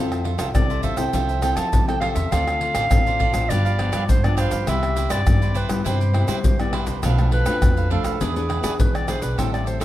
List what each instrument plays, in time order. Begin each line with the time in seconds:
Already playing: upright bass F2, nylon-string guitar F3 C4 E4 A4, cavaquinho F4 A4 C5 E5
0.12 pandeiro, tamborim, shaker
0.24 cavaquinho F4 A4 C5 E5, pandeiro
0.38 upright bass C2, cavaquinho F4 A4 C5 E5, pandeiro, tamborim, shaker
0.55 upright bass C2, nylon-string guitar C3 C4 E4 A4, clarinet D5, pandeiro, tamborim, shaker, surdo
0.70 cavaquinho A4 C5 E5, pandeiro, shaker
0.83 cavaquinho F4 A4 C5 E5, clarinet E5, pandeiro, shaker, surdo
0.97 upright bass C2, nylon-string guitar C4 E4 A4, cavaquinho A4 C5 E5, clarinet G5, pandeiro, tamborim, shaker
1.13 upright bass C2, nylon-string guitar F3, cavaquinho F4 A4 C5 E5, pandeiro, shaker, surdo
1.29 cavaquinho A4 C5 E5, pandeiro, shaker
1.42 nylon-string guitar C4 E4 A4, cavaquinho F4 A4 C5 E5, clarinet G5, pandeiro, tamborim, shaker
1.56 upright bass F3, cavaquinho F4 A4 C5 E5, clarinet A5, pandeiro, tamborim, shaker
1.73 nylon-string guitar C3, pandeiro, shaker, surdo
1.87 nylon-string guitar C4 E4 A4, clarinet G5, pandeiro, tamborim, shaker
2.00 cavaquinho F4 A4 C5 E5, clarinet F5, pandeiro, tamborim
2.15 upright bass E2, cavaquinho A4 C5 E5, clarinet E5, pandeiro, shaker
2.31 upright bass D2, nylon-string guitar D3 C4 F4 A4, cavaquinho F4 A4 C5 D5, clarinet F5, pandeiro, tamborim, shaker, surdo
2.48 pandeiro, tamborim, shaker
2.61 cavaquinho F4 A4 C5 D5, pandeiro
2.75 upright bass A1, cavaquinho F4 A4 C5 D5, pandeiro, tamborim, shaker
2.91 upright bass A1, nylon-string guitar A2 C4 F4 A4, pandeiro, tamborim, shaker, surdo
3.07 cavaquinho A4 C5 D5, pandeiro, shaker
3.19 cavaquinho F4 A4 C5 D5, pandeiro, surdo
3.33 upright bass A1, nylon-string guitar F3 B3 D4, cavaquinho A4 C5 D5, pandeiro, tamborim, shaker
3.49 upright bass G1, nylon-string guitar G2, cavaquinho D4 G4 B4 F5, clarinet D5, pandeiro, shaker, surdo
3.65 cavaquinho G4 B4 F5, pandeiro, shaker
3.78 nylon-string guitar F3 B3 D4, cavaquinho D4 G4 B4 F5, pandeiro, tamborim
3.92 upright bass G2, cavaquinho D4 G4 B4 F5, pandeiro, tamborim, shaker
4.08 nylon-string guitar D3, clarinet C5, pandeiro, shaker, surdo
4.24 nylon-string guitar F3 B3 D4, clarinet D5, pandeiro, tamborim, shaker
4.37 cavaquinho D4 G4 B4 F5, clarinet C5, pandeiro, tamborim, shaker
4.51 upright bass G2, cavaquinho G4 B4 F5, pandeiro, shaker
4.67 upright bass C2, nylon-string guitar C3 G3 B3 E4, cavaquinho E4 B4 C5 G5, clarinet E5, pandeiro, tamborim, shaker, surdo
4.83 pandeiro, tamborim, shaker
4.96 cavaquinho E4 B4 C5 G5, pandeiro, shaker
5.10 upright bass G2, cavaquinho E4 B4 C5 G5, clarinet D5, pandeiro, tamborim, shaker
5.27 upright bass G2, nylon-string guitar G2 G3 B3 E4, pandeiro, tamborim, shaker, surdo
5.42 cavaquinho B4 C5 G5, pandeiro, shaker
5.54 cavaquinho E4 B4 C5 G5, clarinet B4, pandeiro, shaker
5.69 upright bass G2, nylon-string guitar G3 B3 E4, cavaquinho B4 C5 G5, pandeiro, tamborim, shaker
5.84 upright bass G2, nylon-string guitar C3, cavaquinho E4 B4 C5 G5, clarinet C5, pandeiro, shaker, surdo
6.00 cavaquinho B4 C5 G5, pandeiro, shaker
6.13 nylon-string guitar G3 B3 E4, cavaquinho E4 B4 C5 G5, pandeiro, tamborim
6.28 upright bass C3, nylon-string guitar G3 B3 E4, cavaquinho E4 B4 C5 G5, pandeiro, tamborim, shaker
6.44 nylon-string guitar G2, clarinet C5, pandeiro, shaker, surdo
6.59 nylon-string guitar G3 B3 E4, clarinet D5, pandeiro, tamborim, shaker
6.73 cavaquinho E4 B4 C5 G5, pandeiro, tamborim
6.87 upright bass C2, cavaquinho B4 C5 G5, pandeiro, shaker
7.03 upright bass B1, nylon-string guitar B2 F3 A3 D4, cavaquinho D4 A4 B4 F5, pandeiro, tamborim, shaker, surdo
7.18 nylon-string guitar F3 A3 D4, pandeiro, tamborim, shaker
7.31 cavaquinho D4 A4 B4 F5, clarinet B4, pandeiro
7.45 upright bass F2, nylon-string guitar F3 A3 D4, cavaquinho D4 A4 B4 F5, pandeiro, tamborim, shaker
7.62 upright bass F2, nylon-string guitar B2, pandeiro, tamborim, shaker, surdo
7.77 cavaquinho A4 B4 F5, pandeiro, shaker
7.90 nylon-string guitar F3 A3 D4, cavaquinho D4 A4 B4 F5, clarinet A4, pandeiro
8.04 upright bass D2, cavaquinho A4 B4 F5, pandeiro, tamborim, shaker
8.21 upright bass E2, nylon-string guitar E3 B3 D4 G#4, cavaquinho E4 G#4 B4 D5, clarinet G#4, pandeiro, shaker, surdo
8.36 nylon-string guitar B3 D4 G#4, cavaquinho G#4 B4 D5, pandeiro, shaker
8.49 cavaquinho E4 G#4 B4 D5, pandeiro, tamborim
8.63 upright bass E3, nylon-string guitar B3 D4 G#4, cavaquinho E4 G#4 B4 D5, pandeiro, tamborim, shaker
8.79 nylon-string guitar B2, clarinet B4, pandeiro, shaker, surdo
8.95 clarinet D5, pandeiro, tamborim, shaker
9.08 nylon-string guitar B3 D4 G#4, cavaquinho E4 G#4 B4 D5, clarinet C5, pandeiro, tamborim, shaker
9.21 upright bass B1, cavaquinho G#4 B4 D5, clarinet B4, pandeiro, shaker
9.38 upright bass A1, nylon-string guitar A2 G3 C4 E4, cavaquinho A4 C5 E5 G5, clarinet A4, pandeiro, tamborim, shaker, surdo
9.54 clarinet D5, pandeiro, tamborim, shaker
9.66 cavaquinho A4 C5 E5 G5, clarinet C5, pandeiro, shaker
9.80 nylon-string guitar G3 C4, cavaquinho A4 C5 E5 G5, clarinet A4, pandeiro, tamborim, shaker